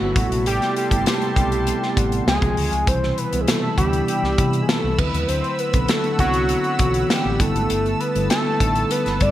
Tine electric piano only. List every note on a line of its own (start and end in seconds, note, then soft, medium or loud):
0.00 0.18 D3 medium
0.00 0.16 G3 medium
0.00 0.16 A3 medium
0.00 0.16 B3 medium
0.00 0.17 E4 medium
0.15 0.76 C3 medium
0.15 0.76 G3 medium
0.15 0.76 A3 medium
0.15 0.76 B3 medium
0.15 0.76 E4 medium
0.90 1.26 C3 medium
0.90 1.26 G3 medium
0.90 1.26 A3 medium
0.90 1.26 B3 medium
0.90 1.27 E4 medium
1.35 1.83 G3 medium
1.35 1.83 A3 medium
1.35 1.83 B3 medium
1.35 1.83 C4 medium
1.35 1.83 E4 medium
1.96 2.27 C3 loud
1.96 2.27 G3 medium
1.96 2.27 A3 medium
1.96 2.27 B3 medium
1.96 2.27 F#5 loud
2.27 2.75 C#3 medium
2.27 2.75 F3 medium
2.27 2.75 G#3 medium
2.27 2.76 C4 medium
2.27 2.76 F4 loud
2.87 3.23 B2 medium
2.87 3.22 C3 medium
2.87 3.23 E3 medium
2.87 3.23 G3 medium
2.87 3.23 E4 medium
3.32 3.67 C3 medium
3.32 3.67 E3 medium
3.32 3.68 G3 medium
3.32 3.68 B3 medium
3.32 3.68 E4 medium
3.77 4.24 C3 medium
3.77 4.24 E3 medium
3.77 4.25 G3 medium
3.77 4.25 B3 medium
3.77 3.84 D4 medium
3.85 4.28 E4 medium
4.38 4.98 C3 medium
4.38 4.98 E3 medium
4.38 4.99 G3 medium
4.38 4.99 B3 medium
4.38 4.98 E4 medium
4.98 5.59 D3 medium
4.98 5.59 F#3 medium
4.98 5.59 A3 medium
4.98 5.59 C4 medium
4.98 5.59 E4 medium
5.73 6.09 D3 medium
5.73 6.09 F#3 medium
5.73 6.09 B3 medium
5.73 6.09 C4 medium
5.73 6.09 D4 medium
6.18 6.66 D3 medium
6.18 6.66 F#3 medium
6.18 6.66 B3 medium
6.18 6.66 C4 medium
6.18 6.66 E4 medium
6.79 7.38 D3 medium
6.79 7.40 E3 medium
6.79 7.39 B3 medium
6.79 7.40 C4 medium
6.79 6.86 F4 medium
6.87 7.43 F#5 medium
7.39 8.00 D3 medium
7.39 8.00 G3 medium
7.39 8.00 A3 medium
7.39 8.00 B3 medium
7.39 8.00 E4 loud
8.15 8.50 D3 medium
8.15 8.50 G3 medium
8.15 8.51 A3 medium
8.15 8.51 B3 medium
8.15 8.51 E4 medium
8.60 9.07 D3 medium
8.60 9.07 G3 medium
8.60 9.07 A3 medium
8.60 9.08 B3 medium
8.60 8.67 D#4 medium
8.68 9.11 E4 medium
9.21 9.31 D3 medium
9.21 9.31 G3 medium
9.21 9.31 A3 medium
9.21 9.31 B3 medium
9.21 9.31 E4 medium